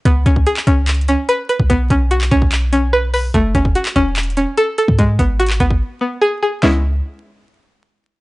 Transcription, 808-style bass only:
\new Staff \with { instrumentName = "808-style bass" } { \clef bass \time 4/4 \key cis \minor \tempo 4 = 146 cis,8 cis,8 r8 cis,4~ cis,16 r4 b,,16~ | b,,8 b,,4 b,,2~ b,,8 | fis,,8 fis,,8 r8 e,,4~ e,,16 r4 gis,16~ | gis,8 gis,,4 gis,,8 r2 |
cis,4 r2. | }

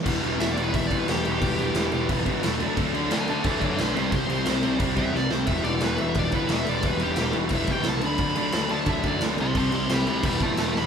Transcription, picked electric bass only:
\new Staff \with { instrumentName = "Picked electric bass" } { \clef bass \time 4/4 \key e \minor \tempo 4 = 177 e,,8 e,,8 e,,8 e,,8 e,,8 g,,8 e,,8 e,,8 | e,,8 e,,8 e,,8 e,,8 e,,8 g,,8 e,,8 d,8 | d,8 d,8 d,8 d,8 d,8 fis,8 b,,8 c,8 | c,8 c,8 c,8 c,8 c,8 e,8 c,8 c,8 |
e,,8 e,,8 e,,8 e,,8 e,,8 g,,8 e,,8 e,,8 | e,,8 e,,8 e,,8 e,,8 e,,8 g,,8 c,8 d,8 | d,8 d,8 d,8 d,8 d,8 fis,8 d,8 c,8 | c,8 c,8 c,8 d,8 e,,8 g,,8 e,,8 e,,8 | }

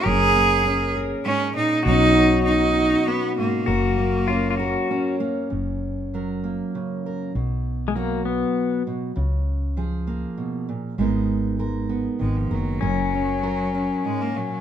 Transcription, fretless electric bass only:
\new Staff \with { instrumentName = "Fretless electric bass" } { \clef bass \time 3/4 \key fis \major \tempo 4 = 99 fis,,2 r4 | b,,2 r4 | fis,,2 r4 | fis,,2 r4 |
b,,2 r4 | cis,2 r4 | gis,,2 gis,,8 fis,,8 | fis,,2 r4 | }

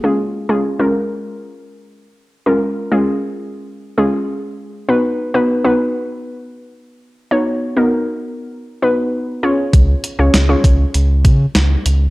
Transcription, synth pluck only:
\new Staff \with { instrumentName = "Synth pluck" } { \time 4/4 \key des \mixolydian \tempo 4 = 99 <aes des' f' aes'>8 r16 <aes des' f' aes'>16 r16 <aes des' f' bes'>4 r4. r16 | <aes des' f' bes'>8 r16 <aes des' f' aes'>4 r8. <aes des' f' aes'>8. r8. | <ces' ees' ges' ces''>8 r16 <ces' ees' ges' ces''>16 r16 <ces' ees' ges' ces''>4 r4. r16 | <ces' ees' ges' des''>8 r16 <ces' ees' ges' bes'>4 r8. <ces' ees' ges' ces''>8. r16 <des' f' aes' des''>8~ |
<des' f' aes' des''>8 r16 <des' f' aes' des''>16 r16 <des' f' aes' des''>4 r4. r16 | }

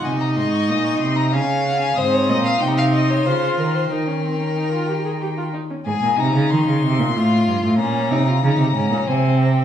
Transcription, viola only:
\new Staff \with { instrumentName = "Viola" } { \time 3/4 \key des \major \tempo 4 = 93 ees'2 des'4 | \key aes \major c'4 ees'4 f'4 | ees'16 des'16 c'16 des'16 ees'16 f'16 g'16 aes'16 g'16 f'16 ees'16 des'16 | r2. |
r2. | }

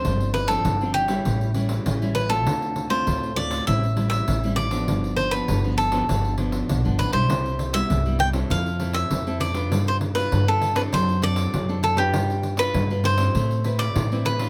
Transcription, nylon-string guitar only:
\new Staff \with { instrumentName = "Nylon-string guitar" } { \time 4/4 \key g \mixolydian \tempo 4 = 99 << { <f c' d'>8. <f c' d'>8 <f c' d'>8 <g des' e'>8. <g cis' e'>8. <g cis' e'>8 <a c' f'>16~ | <a c' f'>8. <a c' f'>8. <a c' f'>8 <g c' e'>16 r16 <g c' e'>8. <g c' e'>8 <f b d'>16~ | <f b d'>8. <f b d'>8 <f b d'>8 <f b d'>16 <f b d'>8 <f b d'>8. <f b d'>8 <g e'>16~ | <g e'>8. <g b e'>8 <g b e'>8 <c' e' a'>8. <c' e' a'>8. <c' e' a'>8 <d' f' b'>16~ |
<d' f' b'>8. <d' f' b'>8 <d' f' b'>8 <c' d' a'>8. <c' d' a'>8 r16 <c' d' a'>8 <d' f' b'>16~ | <d' f' b'>8. <d' f' b'>8 <d' f' b'>8 <c' e'>8. <c' e' b'>8. <c' e' b'>8 <d' f' b'>16 | } \\ { g,4 d4 a,4 e4 | d4 a,4 a,4 e4 | g,4 d4 g,4 d4 | c4 g,4 f4 c4 |
g4 d4 fis4 fis4 | g4 d4 a4 e4 | } >> }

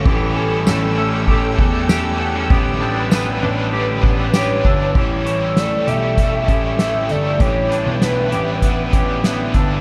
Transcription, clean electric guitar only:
\new Staff \with { instrumentName = "Clean electric guitar" } { \time 4/4 \key a \mixolydian \tempo 4 = 98 <e g'>8 cis'8 a8 cis'8 g'8 a8 g'8 b16 cis'16 | <b g'>8 d'8 b8 d'8 g'8 b8 g'8 d'8 | <e g'>4 a8 g'8 a8 g'8 a4 | <e g'>8 d'8 b8 g'8 b8 g'8 b8 d'8 | }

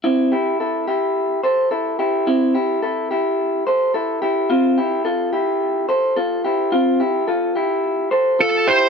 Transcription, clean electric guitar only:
\new Staff \with { instrumentName = "Clean electric guitar" } { \time 4/4 \key c \major \tempo 4 = 108 <c' e'>8 <e' g'>8 <e' a'>8 <e' g'>4 <a' c''>8 <e' a'>8 <e' g'>8 | <c' e'>8 <e' g'>8 <e' a'>8 <e' g'>4 <a' c''>8 <e' a'>8 <e' g'>8 | <c' f'>8 <e' g'>8 <f' a'>8 <e' g'>4 <a' c''>8 <f' a'>8 <e' g'>8 | <c' f'>8 <e' g'>8 <f' a'>8 <e' g'>4 <a' c''>8 <f' a'>8 <e' g'>8 | }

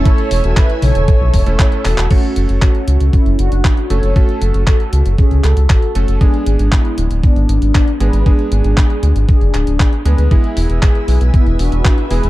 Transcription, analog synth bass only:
\new Staff \with { instrumentName = "Analog synth bass" } { \clef bass \time 4/4 \key fis \minor \tempo 4 = 117 r8 e,,16 e,,16 r8 b,,16 e,,16 r16 b,,16 e,,16 e,,16 r8 e,,16 e,,16 | r8 fis,,16 fis,,16 r8 cis,16 cis,16 r16 fis,,16 fis,,16 fis,,16 r8 fis,,16 fis,,16 | r8 fis,,16 fis,,16 r8 cis,16 fis,,16 r16 cis,16 cis,16 cis,16 r8 fis,,16 fis,,16 | r8 gis,,16 gis,,16 r8 d,,16 d,,16 r16 gis,,16 gis,,16 gis,,16 r8 gis,,16 gis,,16 |
r8 gis,,16 gis,,16 r8 d,16 gis,,16 r16 fis,,16 d,,16 d,,16 r8 d,16 d,16 | r8 e,,16 e,,16 r8 b,,16 b,,16 r16 e,,16 e,,16 e,,16 r8 e,,16 e,,16 | }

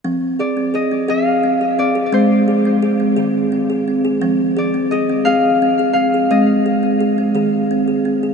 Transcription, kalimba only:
<<
  \new Staff \with { instrumentName = "Kalimba" } { \time 6/8 \key f \dorian \tempo 4. = 57 c'8 aes'16 c'16 aes'16 c'16 aes'8 c'16 aes'16 c'16 aes'16 | c'8 aes'16 c'16 aes'16 c'16 aes'8 c'16 aes'16 c'16 aes'16 | c'8 aes'16 c'16 aes'16 c'16 aes'8 c'16 aes'16 c'16 aes'16 | c'8 aes'16 c'16 aes'16 c'16 aes'8 c'16 aes'16 c'16 aes'16 | }
  \new Staff \with { instrumentName = "Kalimba" } { \clef bass \time 6/8 \key f \dorian f4. c'8 r4 | aes4. ees8 r4 | f4. c'8 r4 | aes4. ees8 r4 | }
>>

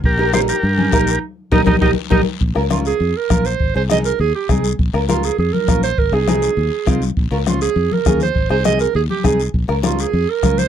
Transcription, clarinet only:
\new Staff \with { instrumentName = "Clarinet" } { \time 4/4 \key bes \dorian \tempo 4 = 202 r2 r8 des'8 ees'4 | r4 ees'8 ees'8 ees'8 r8 ees'8 r8 | r4 f'8 aes'4 bes'4 c''8~ | c''8 c''8 ees''8 bes'8 aes'8 g'8 aes'8. r16 |
r4 f'8 aes'8 aes'8 bes'4 c''8 | bes'8 aes'2. r8 | r4 f'8 aes'4 bes'4 c''8~ | c''8 c''8 ees''8 bes'8 aes'8 g'8 aes'8. r16 |
r4 f'8 aes'4 bes'4 c''8 | }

